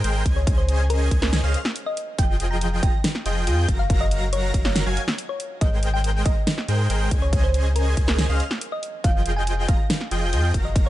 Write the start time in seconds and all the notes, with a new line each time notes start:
0.04 G#1 G#3 G#4 A#4 C5 G5 G6, closed hi-hat
0.26 C#2 C#4 G#4 C5 D#5 G#5 G#6, kick, closed hi-hat
0.36 C#5
0.47 kick, closed hi-hat
0.58 C5
0.69 closed hi-hat
0.90 A#4, closed hi-hat
1.11 C#2 C#4 G#4 C5 D#5 G#5 G#6, kick, closed hi-hat
1.22 A#4, snare
1.33 snare, closed hi-hat
1.44 C#2 C#4 G#4 C5 D#5 F5 F6
1.54 closed hi-hat
1.65 snare
1.76 closed hi-hat
1.86 D#5
1.97 closed hi-hat
2.18 F1 F3 F4 G#4 D#5 G5 G6, kick, closed hi-hat
2.40 closed hi-hat
2.51 A#5
2.61 closed hi-hat
2.83 F1 F3 F4 G#4 D#5 G5 A#5 A#6, kick, closed hi-hat
3.04 snare, closed hi-hat
3.15 snare
3.26 F1 F3 F4 G#4 D#5 G5 G6, closed hi-hat
3.47 F2 F3 F4 G#4 D#5 G5 G6, closed hi-hat
3.68 F#1 F#3 F#4 A#4 F5 A#5 A#6, kick, closed hi-hat
3.79 F5
3.90 kick, closed hi-hat
4.01 D#5
4.11 closed hi-hat
4.33 C#5, closed hi-hat
4.54 F#1 F#3 F#4 A#4 F5 A#5 A#6, kick, closed hi-hat
4.65 C#5, snare
4.76 snare, closed hi-hat
4.86 F#1 F#3 F#4 A#4 F5 G#5 G#6
4.97 closed hi-hat
5.08 snare
5.18 closed hi-hat
5.29 C#5
5.40 closed hi-hat
5.61 G#1 G#3 G#4 A#4 C5 D#5 G5 G6, kick, closed hi-hat
5.83 closed hi-hat
5.94 G5
6.04 closed hi-hat
6.26 G#1 G#3 G#4 A#4 C5 D#5 A#5 A#6, kick, closed hi-hat
6.47 snare, closed hi-hat
6.58 snare
6.68 G#2 G#3 G#4 A#4 C5 G5 G6, closed hi-hat
6.90 G#1 G#3 G#4 A#4 C5 G5 G6, closed hi-hat
7.11 C#2 C#4 G#4 C5 D#5 G#5 G#6, kick, closed hi-hat
7.22 C#5
7.33 kick, closed hi-hat
7.44 C5
7.54 closed hi-hat
7.76 A#4, closed hi-hat
7.97 C#2 C#4 G#4 C5 D#5 G#5 G#6, kick, closed hi-hat
8.08 A#4, snare
8.19 snare, closed hi-hat
8.29 C#2 C#4 G#4 C5 D#5 F5 F6
8.40 closed hi-hat
8.51 snare
8.61 closed hi-hat
8.72 D#5
8.83 closed hi-hat
9.04 F1 F3 F4 G#4 D#5 F5 G5 G6, kick, closed hi-hat
9.26 closed hi-hat
9.36 G#5
9.47 closed hi-hat
9.69 F1 F3 F4 G#4 D#5 F5 A#5 A#6, kick, closed hi-hat
9.90 snare, closed hi-hat
10.01 snare
10.11 F1 F3 F4 G#4 D#5 G5 G6, closed hi-hat
10.33 F2 F3 F4 G#4 D#5 G5 G6, closed hi-hat
10.54 F#1 F#3 F#4 A#4 F5 A#5 A#6, kick, closed hi-hat
10.65 D#5
10.76 kick, closed hi-hat